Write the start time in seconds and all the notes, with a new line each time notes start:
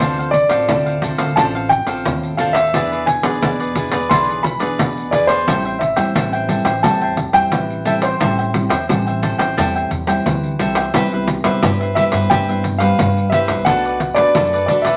Already playing: C5
0.00 D2 D3 C4 D4 F4 A4 C5 F5, pandeiro
0.18 A4 C5 F5, pandeiro
0.31 D5, muted cavaquinho stroke, pandeiro
0.49 A1 C4 F4 A4 C5 F5, pandeiro
0.69 D2 A2 D4 A4 C5 F5, pandeiro
0.86 A4 C5 F5, pandeiro
1.02 C4 D4 F4 A4 C5 F5, pandeiro
1.18 D2 A4 C5 F5, pandeiro
1.36 A1 D3 C4 D4 F4 A4 C5 F5 A5, pandeiro
1.55 A4 C5 F5, pandeiro
1.69 G5, muted cavaquinho stroke, pandeiro
1.87 A1 C4 F4 A4 C5 F5, pandeiro
2.05 D#2 A2, pandeiro
2.23 pandeiro
2.37 C4 D4 F4 A4 C5 F5, pandeiro
2.53 A4 C5 E5 F5, pandeiro
2.73 E2 E3 B3 D4 E4 G#4 B4 D5, pandeiro
2.91 G#4 B4 D5, pandeiro
3.06 G#5, muted cavaquinho stroke, pandeiro
3.23 B1 B3 D4 G#4 B4 D5, pandeiro
3.42 E2 B2 E4 G#4 B4 D5, pandeiro
3.60 G#4 B4 D5, pandeiro
3.75 B3 D4 E4 G#4 B4 D5, pandeiro
3.91 E2 G#4 B4 D5, pandeiro
4.09 B1 E3 B3 D4 E4 G#4 B4 D5 C6, pandeiro
4.28 G#4 B4 D5, pandeiro
4.43 B5, muted cavaquinho stroke, pandeiro
4.60 B1 B3 D4 G#4 B4 D5, pandeiro
4.79 E2 B2, pandeiro
4.97 pandeiro
5.11 B3 D4 E4 G#4 B4 D5, pandeiro
5.27 G#4 B4 C5 D5, pandeiro
5.47 A1 A2 G3 C4 E4 A4 C5 E5 G5, pandeiro
5.65 C5 E5 G5, pandeiro
5.79 E5, muted cavaquinho stroke, pandeiro
5.96 E2 G3 C4 E4 C5 E5 G5, pandeiro
6.15 A1 E3 A4 C5 E5 G5, pandeiro
6.33 C5 E5 G5, pandeiro
6.48 G3 C4 E4 A4 C5 E5 G5, pandeiro
6.65 A1 C5 E5 G5, pandeiro
6.83 E2 A2 G3 C4 E4 A4 C5 E5 G5 A5, pandeiro
7.01 C5 E5 G5, pandeiro
7.17 muted cavaquinho stroke, pandeiro
7.33 E2 G3 C4 E4 C5 E5 G5, pandeiro
7.52 A1 E3, pandeiro
7.70 pandeiro
7.85 G3 C4 E4 A4 C5 E5 G5, pandeiro
8.02 C5 E5 G5, pandeiro
8.20 A1 A2 G3 C4 E4 A4 C5 E5 G5, pandeiro
8.39 C5 E5 G5, pandeiro
8.54 G3 C4 E4, muted cavaquinho stroke, pandeiro
8.69 E2 C5 E5 G5, pandeiro
8.89 A1 E3 G3 C4 E4 A4 C5 E5 G5, pandeiro
9.07 C5 E5 G5, pandeiro
9.22 A4 C5 E5 G5, pandeiro
9.38 A1 C5 E5 G5, pandeiro
9.57 E2 A2 G3 C4 E4 A4 C5 E5 G5, pandeiro
9.75 C5 E5 G5, pandeiro
9.91 E2, muted cavaquinho stroke, pandeiro
10.07 G3 C4 E4 C5 E5 G5, pandeiro
10.26 D2 E3, pandeiro
10.44 pandeiro
10.59 C2 G3 C4 E4 A4 C5 E5 G5, pandeiro
10.75 C5 E5 G5, pandeiro
10.94 C2 C3 G3 B3 E4 G4 B4 C5 E5, pandeiro
11.12 G3 B3 E4 B4 C5 E5, pandeiro
11.28 muted cavaquinho stroke, pandeiro
11.44 C2 G3 B3 E4 B4 C5 E5, pandeiro
11.63 G2 G4 B4 C5 E5, pandeiro
11.81 B4 C5 E5, pandeiro
11.95 G3 B3 E4 G4 B4 C5 E5, pandeiro
12.12 G2 B4 C5 E5, pandeiro
12.30 G2 C3 G4 B4 C5 E5 G5, pandeiro
12.48 G3 B3 E4 B4 C5 E5, pandeiro
12.64 muted cavaquinho stroke, pandeiro
12.78 G3 B4 F5, pandeiro
12.83 C5
12.99 G2, pandeiro
13.17 pandeiro
13.30 G3 B3 G4 C5 E5, pandeiro
13.34 E4 B4 E5
13.48 C2 B4 C5 E5, pandeiro
13.65 B1 B2 A3 D4 A4 F#5, pandeiro
13.69 D4 F#4 B4 D5
13.85 A4 B4 D5, pandeiro
14.00 muted cavaquinho stroke, pandeiro
14.14 B1 A3 D4 A4 B4 D5, pandeiro
14.19 F#4
14.35 F#2 D4 A4 B4 D5, pandeiro
14.53 A4 B4 D5, pandeiro
14.66 A3 D4 A4 B4 D5, pandeiro
14.71 D4 F#4
14.82 B1 D5 E5, pandeiro
14.86 A4 B4